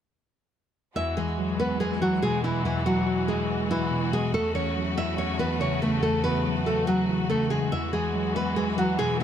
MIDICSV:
0, 0, Header, 1, 4, 480
1, 0, Start_track
1, 0, Key_signature, 4, "major"
1, 0, Tempo, 422535
1, 1089, Time_signature, 4, 2, 24, 8
1, 10492, End_track
2, 0, Start_track
2, 0, Title_t, "Nylon-string guitar"
2, 0, Program_c, 0, 24
2, 1090, Note_on_c, 0, 76, 82
2, 1099, Note_on_c, 0, 64, 71
2, 1302, Note_off_c, 0, 76, 0
2, 1308, Note_off_c, 0, 64, 0
2, 1327, Note_on_c, 0, 68, 74
2, 1337, Note_on_c, 0, 56, 53
2, 1779, Note_off_c, 0, 68, 0
2, 1784, Note_off_c, 0, 56, 0
2, 1812, Note_on_c, 0, 71, 71
2, 1822, Note_on_c, 0, 59, 56
2, 2024, Note_off_c, 0, 71, 0
2, 2029, Note_off_c, 0, 59, 0
2, 2045, Note_on_c, 0, 68, 76
2, 2055, Note_on_c, 0, 56, 56
2, 2259, Note_off_c, 0, 68, 0
2, 2265, Note_off_c, 0, 56, 0
2, 2291, Note_on_c, 0, 66, 78
2, 2301, Note_on_c, 0, 54, 64
2, 2503, Note_off_c, 0, 66, 0
2, 2509, Note_off_c, 0, 54, 0
2, 2527, Note_on_c, 0, 68, 93
2, 2536, Note_on_c, 0, 56, 69
2, 2741, Note_off_c, 0, 68, 0
2, 2745, Note_off_c, 0, 56, 0
2, 2772, Note_on_c, 0, 64, 69
2, 2781, Note_on_c, 0, 52, 57
2, 2983, Note_off_c, 0, 64, 0
2, 2988, Note_off_c, 0, 52, 0
2, 3012, Note_on_c, 0, 64, 75
2, 3022, Note_on_c, 0, 52, 61
2, 3224, Note_off_c, 0, 64, 0
2, 3229, Note_off_c, 0, 52, 0
2, 3249, Note_on_c, 0, 66, 83
2, 3258, Note_on_c, 0, 54, 62
2, 3700, Note_off_c, 0, 66, 0
2, 3705, Note_off_c, 0, 54, 0
2, 3729, Note_on_c, 0, 68, 70
2, 3736, Note_on_c, 0, 56, 61
2, 4180, Note_off_c, 0, 68, 0
2, 4184, Note_off_c, 0, 56, 0
2, 4211, Note_on_c, 0, 64, 81
2, 4220, Note_on_c, 0, 52, 67
2, 4661, Note_off_c, 0, 64, 0
2, 4666, Note_off_c, 0, 52, 0
2, 4694, Note_on_c, 0, 68, 80
2, 4703, Note_on_c, 0, 56, 61
2, 4905, Note_off_c, 0, 68, 0
2, 4909, Note_off_c, 0, 56, 0
2, 4930, Note_on_c, 0, 69, 85
2, 4940, Note_on_c, 0, 57, 62
2, 5142, Note_off_c, 0, 69, 0
2, 5148, Note_off_c, 0, 57, 0
2, 5168, Note_on_c, 0, 73, 89
2, 5178, Note_on_c, 0, 61, 67
2, 5620, Note_off_c, 0, 73, 0
2, 5625, Note_off_c, 0, 61, 0
2, 5652, Note_on_c, 0, 76, 87
2, 5661, Note_on_c, 0, 64, 70
2, 5863, Note_off_c, 0, 76, 0
2, 5868, Note_off_c, 0, 64, 0
2, 5887, Note_on_c, 0, 73, 82
2, 5896, Note_on_c, 0, 61, 65
2, 6100, Note_off_c, 0, 73, 0
2, 6105, Note_off_c, 0, 61, 0
2, 6126, Note_on_c, 0, 71, 81
2, 6136, Note_on_c, 0, 59, 67
2, 6340, Note_off_c, 0, 71, 0
2, 6345, Note_off_c, 0, 59, 0
2, 6370, Note_on_c, 0, 73, 76
2, 6379, Note_on_c, 0, 61, 58
2, 6582, Note_off_c, 0, 73, 0
2, 6588, Note_off_c, 0, 61, 0
2, 6611, Note_on_c, 0, 69, 77
2, 6620, Note_on_c, 0, 57, 62
2, 6823, Note_off_c, 0, 69, 0
2, 6828, Note_off_c, 0, 57, 0
2, 6845, Note_on_c, 0, 69, 78
2, 6855, Note_on_c, 0, 57, 59
2, 7060, Note_off_c, 0, 69, 0
2, 7065, Note_off_c, 0, 57, 0
2, 7086, Note_on_c, 0, 71, 89
2, 7095, Note_on_c, 0, 59, 68
2, 7538, Note_off_c, 0, 71, 0
2, 7543, Note_off_c, 0, 59, 0
2, 7569, Note_on_c, 0, 69, 76
2, 7578, Note_on_c, 0, 57, 57
2, 7782, Note_off_c, 0, 69, 0
2, 7787, Note_off_c, 0, 57, 0
2, 7806, Note_on_c, 0, 66, 85
2, 7816, Note_on_c, 0, 54, 67
2, 8259, Note_off_c, 0, 66, 0
2, 8264, Note_off_c, 0, 54, 0
2, 8288, Note_on_c, 0, 69, 79
2, 8297, Note_on_c, 0, 57, 63
2, 8501, Note_off_c, 0, 69, 0
2, 8506, Note_off_c, 0, 57, 0
2, 8523, Note_on_c, 0, 68, 80
2, 8532, Note_on_c, 0, 56, 58
2, 8739, Note_off_c, 0, 68, 0
2, 8743, Note_off_c, 0, 56, 0
2, 8770, Note_on_c, 0, 76, 86
2, 8779, Note_on_c, 0, 64, 68
2, 8982, Note_off_c, 0, 76, 0
2, 8987, Note_off_c, 0, 64, 0
2, 9008, Note_on_c, 0, 68, 74
2, 9017, Note_on_c, 0, 56, 57
2, 9460, Note_off_c, 0, 68, 0
2, 9464, Note_off_c, 0, 56, 0
2, 9495, Note_on_c, 0, 71, 70
2, 9503, Note_on_c, 0, 59, 55
2, 9705, Note_off_c, 0, 71, 0
2, 9710, Note_off_c, 0, 59, 0
2, 9728, Note_on_c, 0, 68, 76
2, 9737, Note_on_c, 0, 56, 53
2, 9941, Note_off_c, 0, 68, 0
2, 9946, Note_off_c, 0, 56, 0
2, 9973, Note_on_c, 0, 66, 83
2, 9982, Note_on_c, 0, 54, 62
2, 10184, Note_off_c, 0, 66, 0
2, 10189, Note_off_c, 0, 54, 0
2, 10208, Note_on_c, 0, 68, 92
2, 10218, Note_on_c, 0, 56, 69
2, 10421, Note_off_c, 0, 68, 0
2, 10427, Note_off_c, 0, 56, 0
2, 10455, Note_on_c, 0, 64, 70
2, 10492, Note_off_c, 0, 64, 0
2, 10492, End_track
3, 0, Start_track
3, 0, Title_t, "String section"
3, 0, Program_c, 1, 48
3, 1089, Note_on_c, 1, 52, 79
3, 1089, Note_on_c, 1, 66, 82
3, 1090, Note_on_c, 1, 56, 72
3, 4891, Note_off_c, 1, 52, 0
3, 4891, Note_off_c, 1, 56, 0
3, 4930, Note_on_c, 1, 40, 78
3, 4930, Note_on_c, 1, 49, 69
3, 4930, Note_on_c, 1, 57, 71
3, 8731, Note_off_c, 1, 40, 0
3, 8731, Note_off_c, 1, 49, 0
3, 8731, Note_off_c, 1, 57, 0
3, 8770, Note_on_c, 1, 52, 79
3, 8770, Note_on_c, 1, 56, 70
3, 10492, Note_off_c, 1, 52, 0
3, 10492, Note_off_c, 1, 56, 0
3, 10492, Note_off_c, 1, 66, 0
3, 10492, End_track
4, 0, Start_track
4, 0, Title_t, "Tine electric piano"
4, 0, Program_c, 2, 4
4, 1089, Note_on_c, 2, 40, 90
4, 1329, Note_on_c, 2, 52, 74
4, 1337, Control_c, 2, 64, 127
4, 1569, Note_on_c, 2, 54, 91
4, 1808, Note_on_c, 2, 56, 87
4, 2274, Note_off_c, 2, 52, 0
4, 2288, Note_on_c, 2, 52, 83
4, 2289, Note_off_c, 2, 40, 0
4, 2528, Note_on_c, 2, 47, 84
4, 2760, Note_off_c, 2, 47, 0
4, 2769, Note_off_c, 2, 54, 0
4, 2773, Note_on_c, 2, 47, 76
4, 3007, Note_on_c, 2, 40, 92
4, 3009, Note_off_c, 2, 56, 0
4, 3233, Note_off_c, 2, 52, 0
4, 3247, Note_on_c, 2, 52, 75
4, 3485, Note_on_c, 2, 54, 91
4, 3724, Note_on_c, 2, 56, 83
4, 3971, Note_off_c, 2, 47, 0
4, 4197, Note_off_c, 2, 52, 0
4, 4208, Note_off_c, 2, 40, 0
4, 4210, Note_on_c, 2, 52, 83
4, 4444, Note_on_c, 2, 47, 83
4, 4675, Note_off_c, 2, 47, 0
4, 4687, Note_off_c, 2, 54, 0
4, 4689, Note_on_c, 2, 47, 76
4, 4927, Note_off_c, 2, 56, 0
4, 4927, Note_on_c, 2, 40, 92
4, 4929, Note_off_c, 2, 47, 0
4, 4930, Note_off_c, 2, 52, 0
4, 4944, Control_c, 2, 64, 0
4, 5121, Control_c, 2, 64, 127
4, 5170, Note_on_c, 2, 52, 76
4, 5408, Note_on_c, 2, 54, 84
4, 5648, Note_on_c, 2, 57, 85
4, 6118, Note_off_c, 2, 52, 0
4, 6128, Note_off_c, 2, 40, 0
4, 6131, Note_on_c, 2, 52, 80
4, 6366, Note_on_c, 2, 49, 85
4, 6597, Note_off_c, 2, 49, 0
4, 6609, Note_off_c, 2, 54, 0
4, 6611, Note_on_c, 2, 49, 77
4, 6845, Note_on_c, 2, 40, 88
4, 6848, Note_off_c, 2, 57, 0
4, 7073, Note_off_c, 2, 52, 0
4, 7086, Note_on_c, 2, 52, 76
4, 7329, Note_on_c, 2, 54, 86
4, 7566, Note_on_c, 2, 57, 82
4, 7810, Note_off_c, 2, 49, 0
4, 8041, Note_off_c, 2, 52, 0
4, 8047, Note_off_c, 2, 40, 0
4, 8054, Note_on_c, 2, 52, 87
4, 8288, Note_on_c, 2, 49, 83
4, 8514, Note_off_c, 2, 49, 0
4, 8528, Note_on_c, 2, 49, 78
4, 8529, Note_off_c, 2, 54, 0
4, 8768, Note_off_c, 2, 57, 0
4, 8769, Note_off_c, 2, 49, 0
4, 8769, Note_on_c, 2, 40, 89
4, 8772, Note_off_c, 2, 52, 0
4, 8782, Control_c, 2, 64, 0
4, 8960, Control_c, 2, 64, 127
4, 9009, Note_on_c, 2, 52, 74
4, 9248, Note_on_c, 2, 54, 89
4, 9488, Note_on_c, 2, 56, 87
4, 9959, Note_off_c, 2, 52, 0
4, 9969, Note_off_c, 2, 40, 0
4, 9972, Note_on_c, 2, 52, 84
4, 10211, Note_on_c, 2, 47, 84
4, 10442, Note_off_c, 2, 47, 0
4, 10449, Note_off_c, 2, 54, 0
4, 10456, Note_on_c, 2, 47, 79
4, 10492, Note_off_c, 2, 47, 0
4, 10492, Note_off_c, 2, 52, 0
4, 10492, Note_off_c, 2, 56, 0
4, 10492, End_track
0, 0, End_of_file